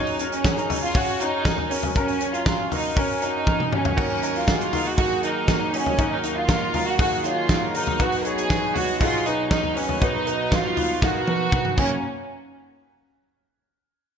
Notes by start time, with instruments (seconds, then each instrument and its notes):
Already playing: grand piano F#1 F#2 C#4 F#4 G#4 A#4 C#5, violin section D#4
0.07 open hi-hat
0.19 grand piano C#4 F#4 A#4, hi-hat pedal, open hi-hat
0.32 violin section C#4, hi-hat pedal, open hi-hat
0.44 grand piano C#4 F#4 G#4, kick, snare, hi-hat pedal, open hi-hat
0.57 violin section D#4, hi-hat pedal
0.69 grand piano C#4 F#4 C#5, floor tom, hi-hat pedal, open hi-hat
0.83 violin section F4
0.94 grand piano C#4 F#4 C#5, violin section F#4, kick, hi-hat pedal, open hi-hat
1.20 grand piano C#4 F#4 A#4, violin section D#4, hi-hat pedal, open hi-hat
1.45 grand piano C#4 F#4 A#4, kick, snare, hi-hat pedal, open hi-hat
1.58 floor tom
1.70 grand piano C#4 F#4 A#4, violin section C#4, hi-hat pedal, open hi-hat
1.83 floor tom
1.95 grand piano F#1 F#2 C#4 F#4 A#4, violin section C#4, kick, hi-hat pedal, open hi-hat
2.08 open hi-hat
2.20 grand piano C#4 F#4 C#5, hi-hat pedal, open hi-hat
2.33 violin section F4, hi-hat pedal
2.46 grand piano C#4 F#4 A#4, kick, snare, hi-hat pedal, open hi-hat
2.71 grand piano C#4 F#4 A#4, violin section D#4, floor tom, hi-hat pedal, open hi-hat
2.96 grand piano C#4 F#4 A#4, violin section C#4, kick, hi-hat pedal, open hi-hat
3.21 grand piano C#4 F#4 A#4, violin section D#4, hi-hat pedal, open hi-hat
3.47 grand piano C#4 F#4 A#4, kick, high tom
3.60 mid tom
3.72 grand piano C#4 F#4 C#5, violin section C#4, mid tom
3.85 floor tom
3.97 grand piano D#2 D#3 D#4 F#4 A#4, clean electric guitar D#3 F#3 A#3 D#4 F#4, kick, crash
4.22 grand piano D#4 F#4 A#4, hi-hat pedal, open hi-hat
4.36 violin section F4, open hi-hat
4.47 clean electric guitar F#3 A#3 D#4 F#4, grand piano D#4 F#4 G#4, kick, snare, hi-hat pedal, open hi-hat
4.61 violin section F4, hi-hat pedal
4.73 grand piano D#4 F#4 A#4, floor tom, hi-hat pedal, open hi-hat
4.86 violin section F#4
4.97 clean electric guitar D#3 F#3 A#3 D#4 F#4, grand piano D#4 F#4 G#4, violin section F#4, kick, hi-hat pedal, open hi-hat
5.23 grand piano D#4 F#4 A#4, violin section D#4, hi-hat pedal, open hi-hat
5.48 clean electric guitar F#3 A#3 D#4 F#4, grand piano D#4 F#4 A#4, kick, snare, hi-hat pedal, open hi-hat
5.73 violin section C#4, grand piano D#4 F#4 A#4, hi-hat pedal, open hi-hat
5.86 floor tom
5.98 grand piano D#2 D#3 D#4 F#4 A#4, clean electric guitar D#3 F#3 A#3 D#4 F#4, kick, hi-hat pedal, open hi-hat
6.11 violin section D#4
6.23 grand piano D#4 F#4 A#4, hi-hat pedal, open hi-hat
6.36 violin section F4
6.48 clean electric guitar F#3 A#3 D#4 F#4, grand piano D#4 F#4 A#4, kick, snare, hi-hat pedal, open hi-hat
6.74 grand piano D#4 F#4 A#4, floor tom, hi-hat pedal, open hi-hat
6.86 violin section F#4
6.98 clean electric guitar D#3 F#3 A#3 D#4 F#4, grand piano D#4 F#4 G#4, violin section F#4, kick, hi-hat pedal, open hi-hat
7.24 grand piano D#4 F#4 C#5, violin section F4, hi-hat pedal, open hi-hat
7.49 clean electric guitar F#3 A#3 D#4 F#4, grand piano D#4 F#4 A#4, kick, snare, hi-hat pedal, open hi-hat
7.74 grand piano D#4 F#4 A#4, violin section D#4, hi-hat pedal, open hi-hat
7.87 floor tom
7.99 grand piano B1 B2 D#4 F#4 B4, clean electric guitar B2 F#3 B3 D#4 F#4, violin section F#4, kick, hi-hat pedal, open hi-hat
8.12 open hi-hat
8.19 violin section A#4
8.24 grand piano D#4 F#4 C#5, violin section G#4, hi-hat pedal, open hi-hat
8.38 hi-hat pedal
8.49 clean electric guitar F#3 B3 D#4 F#4, grand piano D#4 F#4 B4, kick, snare, hi-hat pedal, open hi-hat
8.75 grand piano D#4 F#4 C#5, violin section F#4, floor tom, hi-hat pedal, open hi-hat
9.00 clean electric guitar B2 F#3 B3 D#4 F#4, grand piano D#4 F#4 G#4, violin section F4, kick, hi-hat pedal, open hi-hat
9.26 grand piano D#4 F#4 B4, violin section D#4, hi-hat pedal, open hi-hat
9.51 clean electric guitar F#3 B3 D#4 F#4, grand piano D#4 F#4 A#4, violin section D#4, kick, snare, hi-hat pedal, open hi-hat
9.64 floor tom
9.76 violin section C#4, grand piano D#4 F#4 B4, hi-hat pedal, open hi-hat
9.89 floor tom
10.01 grand piano B1 B2 D#4 F#4 B4, clean electric guitar B2 F#3 B3 D#4 F#4, violin section D#4, kick, hi-hat pedal, open hi-hat
10.26 grand piano D#4 F#4 B4, hi-hat pedal, open hi-hat
10.51 clean electric guitar F#3 B3 D#4 F#4, grand piano D#4 F#4 B4, violin section F4, kick, snare, hi-hat pedal, open hi-hat
10.76 grand piano D#4 F#4 B4, floor tom, hi-hat pedal, open hi-hat
11.02 clean electric guitar B2 F#3 B3 D#4 F#4, grand piano D#4 F#4 A#4, violin section F#4, kick, snare
11.27 grand piano D#4 F#4 B4, high tom
11.52 clean electric guitar F#3 B3 D#4 F#4, grand piano D#4 F#4 B4, kick, mid tom
11.65 mid tom
11.77 clean electric guitar F#2 C#3 F#3 A#3 C#4 F#4, grand piano F#2 A#3 C#4 F#4 C#5, violin section C#4, kick, crash